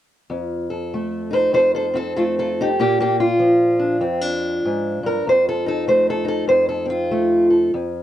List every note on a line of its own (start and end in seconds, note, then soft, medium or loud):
0.30 1.52 F2 medium
0.70 1.32 A4 soft
0.94 2.16 A3 medium
1.31 2.58 D#4 soft
1.31 1.53 C5 medium
1.53 2.77 F2 medium
1.53 1.60 A4 medium
1.53 1.74 C5 medium
1.75 1.85 A4 medium
1.75 1.96 C5 medium
1.93 2.76 C4 soft
1.93 2.15 A4 medium
2.16 2.75 A3 medium
2.16 2.22 F4 medium
2.16 2.37 A4 medium
2.39 2.48 F4 medium
2.39 2.79 A4 medium
2.61 2.67 D#4 medium
2.61 2.79 G4 medium
2.79 4.02 A#2 medium
2.79 2.99 A#3 medium
2.79 3.00 G4 medium
3.00 3.20 A#3 medium
3.00 3.20 G4 medium
3.20 5.05 F4 medium
3.39 5.69 F3 medium
3.79 4.01 D4 soft
4.01 4.63 F2 medium
4.01 4.21 C4 soft
4.21 5.26 D4 soft
4.65 5.02 G#2 medium
5.03 5.26 G2 medium
5.03 5.26 A#4 medium
5.27 6.47 F2 medium
5.27 5.48 C5 medium
5.49 5.67 A4 medium
5.66 6.24 D#4 soft
5.66 5.88 A4 medium
5.88 7.10 A3 medium
5.88 6.08 C5 medium
6.10 6.27 A4 medium
6.25 7.70 D#4 soft
6.25 6.48 A4 medium
6.48 7.72 F2 medium
6.48 6.68 C5 medium
6.69 6.89 A4 medium
6.85 7.69 C4 soft
6.90 7.48 F4 medium
7.11 7.70 A3 medium
7.50 7.71 A4 soft
7.74 8.03 F2 medium